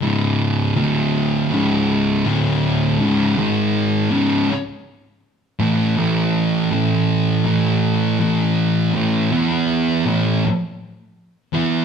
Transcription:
<<
  \new Staff \with { instrumentName = "Distorted electric guitar" } { \clef bass \time 4/4 \key cis \phrygian \tempo 4 = 81 <cis, gis, cis>4 <d, a, d>4 <cis, gis, cis>4 <d, a, d>4 | <cis, gis, cis>8 <gis, dis gis>4 <cis, gis, cis>8 r4. <a, e a>8 | <a, e a>4 <a, e a>4 <a, e a>4 <a, e a>4 | <a, e a>8 <e b e'>4 <a, e a>8 r4. <e b e'>8 | }
  \new Staff \with { instrumentName = "Distorted electric guitar" } { \clef bass \time 4/4 \key cis \phrygian <cis, gis, cis>4 <d, a, d>4 <cis, gis, cis>4 <d, a, d>4 | <cis, gis, cis>8 <gis, dis gis>4 <cis, gis, cis>8 r4. <a, e a>8 | <a, e a>4 <a, e a>4 <a, e a>4 <a, e a>4 | <a, e a>8 <e b e'>4 <a, e a>8 r4. <e b e'>8 | }
>>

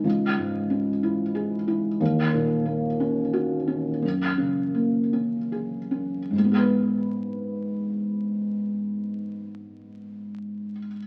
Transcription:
\new Staff \with { instrumentName = "Felt piano" } { \time 6/8 \key gis \minor \tempo 4. = 52 cis,8 gis,8 cis'8 e'8 gis'8 e'8 | dis,8 ais,8 ais8 cis'8 fis'8 cis'8 | fis,8 cis8 ais8 cis'8 gis'8 cis'8 | <gis, gis b gis' b'>2.~ |
<gis, gis b gis' b'>2. | }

